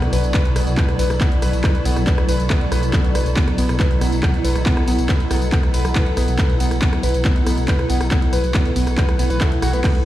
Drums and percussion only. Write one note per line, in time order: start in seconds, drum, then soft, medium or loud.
0.02 cross-stick medium
0.02 closed hi-hat medium
0.13 open hi-hat loud
0.13 ride medium
0.13 tambourine medium
0.24 closed hi-hat medium
0.24 tambourine soft
0.34 kick loud
0.34 cross-stick medium
0.34 clap loud
0.34 closed hi-hat medium
0.34 ride medium
0.34 tambourine soft
0.45 closed hi-hat medium
0.56 cross-stick loud
0.56 open hi-hat loud
0.56 ride medium
0.56 tambourine medium
0.67 closed hi-hat medium
0.67 tambourine soft
0.77 kick loud
0.77 clap loud
0.77 closed hi-hat loud
0.77 ride medium
0.77 tambourine soft
0.89 cross-stick medium
0.89 closed hi-hat medium
0.99 open hi-hat loud
0.99 ride medium
0.99 tambourine medium
1.10 cross-stick loud
1.10 closed hi-hat medium
1.10 tambourine soft
1.21 kick loud
1.21 clap loud
1.21 closed hi-hat loud
1.21 ride medium
1.32 closed hi-hat medium
1.42 cross-stick medium
1.42 open hi-hat loud
1.42 ride medium
1.42 tambourine medium
1.53 closed hi-hat medium
1.53 tambourine soft
1.64 kick loud
1.64 cross-stick loud
1.64 clap loud
1.64 closed hi-hat loud
1.64 ride medium
1.64 tambourine soft
1.75 closed hi-hat soft
1.85 open hi-hat loud
1.85 ride medium
1.85 tambourine medium
1.96 cross-stick medium
1.96 closed hi-hat medium
1.96 tambourine soft
2.07 kick loud
2.07 clap loud
2.07 closed hi-hat medium
2.07 ride medium
2.07 tambourine soft
2.18 cross-stick loud
2.18 closed hi-hat medium
2.29 open hi-hat loud
2.29 ride medium
2.29 tambourine medium
2.40 closed hi-hat medium
2.40 tambourine soft
2.50 kick loud
2.50 cross-stick medium
2.50 clap loud
2.50 closed hi-hat loud
2.50 ride medium
2.50 tambourine soft
2.61 closed hi-hat medium
2.72 cross-stick loud
2.72 open hi-hat loud
2.72 ride medium
2.72 tambourine medium
2.83 closed hi-hat medium
2.83 tambourine soft
2.93 kick loud
2.93 cross-stick medium
2.93 clap loud
2.93 closed hi-hat medium
2.93 ride medium
2.93 tambourine soft
3.04 closed hi-hat medium
3.15 cross-stick loud
3.15 open hi-hat loud
3.15 ride medium
3.15 tambourine medium
3.26 closed hi-hat medium
3.26 tambourine soft
3.36 kick loud
3.36 clap loud
3.36 closed hi-hat medium
3.36 ride medium
3.36 tambourine soft
3.48 cross-stick medium
3.48 closed hi-hat soft
3.58 open hi-hat loud
3.58 ride medium
3.58 tambourine medium
3.69 cross-stick loud
3.69 closed hi-hat medium
3.69 tambourine soft
3.80 kick loud
3.80 clap loud
3.80 closed hi-hat medium
3.80 ride medium
3.80 tambourine soft
3.91 closed hi-hat medium
4.01 cross-stick medium
4.01 open hi-hat loud
4.01 ride medium
4.01 tambourine medium
4.12 closed hi-hat medium
4.12 tambourine soft
4.23 kick loud
4.23 cross-stick loud
4.23 clap loud
4.23 closed hi-hat medium
4.23 ride medium
4.23 tambourine soft
4.34 closed hi-hat soft
4.45 open hi-hat loud
4.45 ride medium
4.45 tambourine medium
4.56 cross-stick medium
4.56 closed hi-hat medium
4.56 tambourine soft
4.66 kick loud
4.66 clap loud
4.66 closed hi-hat medium
4.66 ride medium
4.66 tambourine soft
4.77 cross-stick loud
4.77 closed hi-hat medium
4.88 open hi-hat loud
4.88 ride medium
4.88 tambourine medium
4.99 closed hi-hat medium
4.99 tambourine soft
5.09 kick loud
5.09 cross-stick medium
5.09 clap loud
5.09 closed hi-hat medium
5.09 ride medium
5.09 tambourine soft
5.20 closed hi-hat soft
5.31 cross-stick loud
5.31 open hi-hat loud
5.31 ride medium
5.31 tambourine medium
5.42 closed hi-hat medium
5.42 tambourine soft
5.52 kick loud
5.52 clap loud
5.52 closed hi-hat medium
5.52 ride medium
5.63 cross-stick medium
5.63 closed hi-hat medium
5.74 open hi-hat loud
5.74 ride medium
5.74 tambourine medium
5.85 cross-stick loud
5.85 closed hi-hat medium
5.85 tambourine soft
5.96 kick loud
5.96 clap loud
5.96 closed hi-hat medium
5.96 ride medium
5.96 tambourine soft
6.06 closed hi-hat medium
6.17 cross-stick medium
6.17 open hi-hat loud
6.17 ride medium
6.17 tambourine medium
6.28 closed hi-hat medium
6.28 tambourine soft
6.39 kick loud
6.39 cross-stick medium
6.39 clap loud
6.39 closed hi-hat medium
6.39 ride medium
6.39 tambourine soft
6.50 closed hi-hat medium
6.60 open hi-hat loud
6.60 ride medium
6.60 tambourine medium
6.71 cross-stick medium
6.71 closed hi-hat medium
6.71 tambourine soft
6.82 kick loud
6.82 clap loud
6.82 closed hi-hat medium
6.82 ride medium
6.82 tambourine soft
6.93 cross-stick medium
6.93 closed hi-hat soft
7.03 open hi-hat loud
7.03 ride medium
7.03 tambourine medium
7.14 closed hi-hat medium
7.14 tambourine soft
7.25 kick loud
7.25 cross-stick medium
7.25 clap loud
7.25 closed hi-hat medium
7.25 ride medium
7.25 tambourine soft
7.36 closed hi-hat medium
7.47 cross-stick medium
7.47 open hi-hat loud
7.47 ride medium
7.47 tambourine medium
7.58 closed hi-hat medium
7.58 tambourine soft
7.68 kick loud
7.68 clap loud
7.68 closed hi-hat medium
7.68 ride medium
7.68 tambourine soft
7.79 cross-stick medium
7.79 closed hi-hat soft
7.90 open hi-hat loud
7.90 ride medium
7.90 tambourine medium
8.01 cross-stick loud
8.01 closed hi-hat medium
8.01 tambourine soft
8.11 kick loud
8.11 clap loud
8.11 closed hi-hat loud
8.11 ride medium
8.11 tambourine soft
8.22 closed hi-hat medium
8.33 cross-stick medium
8.33 open hi-hat loud
8.33 ride medium
8.33 tambourine medium
8.44 closed hi-hat medium
8.44 tambourine soft
8.54 kick loud
8.54 cross-stick loud
8.54 clap loud
8.54 closed hi-hat loud
8.54 ride medium
8.54 tambourine soft
8.65 closed hi-hat medium
8.76 open hi-hat loud
8.76 ride medium
8.76 tambourine medium
8.87 cross-stick medium
8.87 closed hi-hat medium
8.87 tambourine soft
8.98 kick loud
8.98 clap loud
8.98 closed hi-hat medium
8.98 ride medium
8.98 tambourine soft
9.09 cross-stick medium
9.09 closed hi-hat medium
9.19 open hi-hat loud
9.19 ride medium
9.19 tambourine medium
9.30 closed hi-hat medium
9.30 tambourine soft
9.41 kick loud
9.41 cross-stick medium
9.41 clap loud
9.41 closed hi-hat loud
9.41 ride medium
9.41 tambourine soft
9.52 closed hi-hat medium
9.62 cross-stick loud
9.62 open hi-hat loud
9.62 ride medium
9.62 tambourine medium
9.73 closed hi-hat medium
9.73 tambourine soft
9.84 kick loud
9.84 cross-stick medium
9.84 clap loud
9.84 closed hi-hat loud
9.84 crash medium
9.84 ride medium
9.84 tambourine soft
9.95 closed hi-hat medium